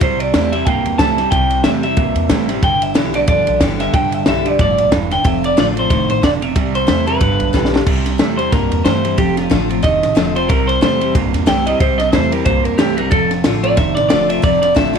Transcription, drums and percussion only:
0.01 kick, ride
0.20 ride
0.34 snare, ride
0.53 ride
0.66 kick, ride
0.85 ride
0.99 kick, snare, ride
1.18 snare, ride
1.32 kick, ride
1.50 ride
1.64 snare, ride
1.83 ride
1.97 kick, ride
2.16 ride
2.29 kick, snare, ride
2.49 snare, ride
2.63 kick, ride
2.82 ride
2.95 snare, ride
3.14 ride
3.28 kick, ride
3.47 ride
3.61 kick, snare, ride
3.80 snare, ride
3.94 kick, ride
4.12 ride
4.26 snare, ride
4.46 ride
4.59 kick, ride
4.78 ride
4.92 kick, snare, ride
5.11 snare, ride
5.25 kick, ride
5.44 ride
5.58 snare, ride
5.77 ride
5.90 kick, ride
6.10 ride
6.23 kick, snare, ride
6.42 ride
6.56 kick, ride
6.75 ride
6.88 snare, ride
7.07 ride
7.21 kick, ride
7.40 ride
7.54 kick, snare
7.65 snare
7.76 snare
7.87 kick, crash
8.06 snare, ride
8.19 snare, ride
8.39 ride
8.52 kick, snare, ride
8.72 ride
8.86 snare, ride
9.05 ride
9.18 kick, ride
9.37 snare, ride
9.51 kick, snare, ride
9.70 ride
9.84 kick, snare, ride
10.03 snare, ride
10.17 snare, ride
10.36 ride
10.50 kick, ride
10.69 ride
10.82 snare, ride
11.01 ride
11.15 kick, ride
11.34 snare, ride
11.47 snare, ride
11.67 ride
11.80 kick, ride
12.00 snare, ride
12.13 kick, snare, ride
12.32 ride
12.45 kick, ride
12.65 ride
12.79 snare, ride
12.98 ride
13.12 kick, ride
13.31 snare, ride
13.44 snare, ride
13.64 ride
13.77 kick, snare, ride
13.97 snare, ride
14.10 snare, ride
14.30 ride
14.43 kick, ride
14.63 snare, ride
14.76 kick, snare, ride
14.95 ride

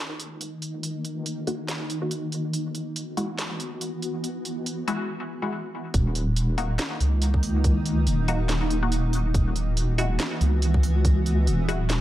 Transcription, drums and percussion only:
0.20 closed hi-hat
0.41 closed hi-hat
0.62 closed hi-hat
0.83 closed hi-hat
1.05 closed hi-hat
1.26 closed hi-hat
1.47 closed hi-hat
1.68 snare, closed hi-hat
1.90 closed hi-hat
2.11 closed hi-hat
2.32 closed hi-hat
2.53 closed hi-hat
2.75 closed hi-hat
2.96 closed hi-hat
3.17 closed hi-hat
3.38 snare, closed hi-hat
3.60 closed hi-hat
3.81 closed hi-hat
4.02 closed hi-hat
4.24 closed hi-hat
4.45 closed hi-hat
4.66 closed hi-hat
4.88 closed hi-hat
5.94 kick, closed hi-hat
6.15 closed hi-hat
6.36 closed hi-hat
6.58 closed hi-hat
6.79 snare, clap, closed hi-hat
7.00 closed hi-hat
7.22 closed hi-hat
7.34 kick
7.43 open hi-hat
7.64 kick, closed hi-hat
7.86 closed hi-hat
8.07 closed hi-hat
8.28 closed hi-hat
8.49 snare, clap, closed hi-hat
8.71 closed hi-hat
8.92 closed hi-hat
9.13 open hi-hat
9.34 kick, closed hi-hat
9.56 closed hi-hat
9.77 closed hi-hat
9.98 closed hi-hat
10.20 snare, clap, closed hi-hat
10.41 closed hi-hat
10.62 closed hi-hat
10.74 kick
10.83 open hi-hat
11.05 kick, closed hi-hat
11.26 closed hi-hat
11.47 closed hi-hat
11.69 closed hi-hat
11.90 snare, clap, closed hi-hat

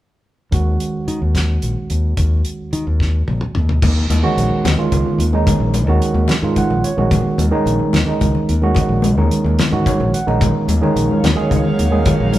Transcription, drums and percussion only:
0.52 kick, closed hi-hat
0.80 closed hi-hat
1.08 closed hi-hat
1.35 kick, snare, closed hi-hat
1.62 closed hi-hat
1.90 closed hi-hat
2.17 kick, closed hi-hat
2.45 closed hi-hat
2.73 closed hi-hat
3.00 kick, snare
3.28 high tom
3.41 mid tom
3.55 mid tom
3.69 floor tom
3.82 kick, crash, muted conga, low conga
3.97 low conga
4.10 closed hi-hat, high conga
4.25 low conga
4.38 closed hi-hat
4.65 snare, closed hi-hat, muted conga, low conga
4.92 kick, closed hi-hat, high conga, low conga
5.06 low conga
5.20 closed hi-hat
5.33 high conga
5.47 kick, closed hi-hat, muted conga, low conga
5.61 low conga
5.74 closed hi-hat, high conga
5.87 low conga
6.02 closed hi-hat
6.15 high conga
6.28 snare, closed hi-hat, muted conga, low conga
6.56 kick, closed hi-hat, high conga, low conga
6.71 low conga
6.84 closed hi-hat
6.98 high conga
7.11 kick, closed hi-hat, muted conga, low conga
7.24 low conga
7.38 closed hi-hat, high conga
7.67 closed hi-hat
7.79 high conga
7.93 snare, closed hi-hat, muted conga, low conga
8.21 kick, closed hi-hat, high conga, low conga
8.35 low conga
8.49 closed hi-hat
8.62 high conga
8.75 kick, closed hi-hat, muted conga, low conga
9.02 closed hi-hat, high conga, low conga
9.18 low conga
9.31 closed hi-hat, low conga
9.46 high conga
9.59 snare, closed hi-hat, muted conga, low conga
9.86 kick, closed hi-hat, high conga
10.01 low conga
10.14 closed hi-hat
10.28 high conga, low conga
10.41 kick, closed hi-hat, muted conga, low conga
10.56 low conga
10.69 closed hi-hat, high conga
10.83 low conga
10.97 closed hi-hat
11.11 high conga
11.24 snare, closed hi-hat, muted conga, low conga
11.51 kick, closed hi-hat, high conga, low conga
11.65 low conga
11.79 closed hi-hat
11.93 high conga
12.06 kick, closed hi-hat, muted conga, low conga
12.20 low conga
12.33 closed hi-hat, high conga

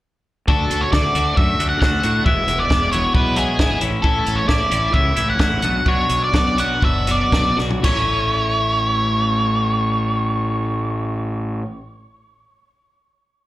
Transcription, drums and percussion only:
0.48 kick
0.71 closed hi-hat
0.93 kick, snare
1.15 closed hi-hat
1.37 kick
1.60 closed hi-hat
1.82 kick, snare
2.03 closed hi-hat
2.26 kick
2.48 closed hi-hat
2.70 kick, snare
2.93 closed hi-hat
3.15 kick
3.36 closed hi-hat
3.59 kick, snare
3.81 closed hi-hat
4.04 kick
4.27 closed hi-hat
4.49 kick, snare
4.72 closed hi-hat
4.94 kick
5.17 closed hi-hat
5.39 kick, snare
5.62 closed hi-hat
5.86 kick
6.10 closed hi-hat
6.34 kick, snare
6.58 closed hi-hat
6.82 kick
7.07 closed hi-hat
7.32 kick, snare
7.58 snare
7.71 floor tom
7.84 kick, crash

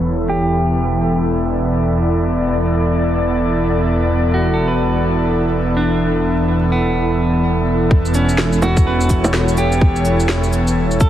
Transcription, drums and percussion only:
7.91 kick
8.05 shaker
8.14 cabasa
8.29 shaker
8.38 snare
8.53 shaker
8.62 low bongo, cabasa
8.77 kick, shaker
9.01 shaker
9.09 kick, cabasa
9.24 low bongo, shaker
9.33 snare
9.48 shaker
9.57 cabasa
9.72 shaker
9.81 kick
9.96 shaker
10.05 cabasa
10.20 shaker
10.29 snare
10.44 shaker
10.53 cabasa
10.68 shaker
10.91 shaker
11.00 kick, cabasa

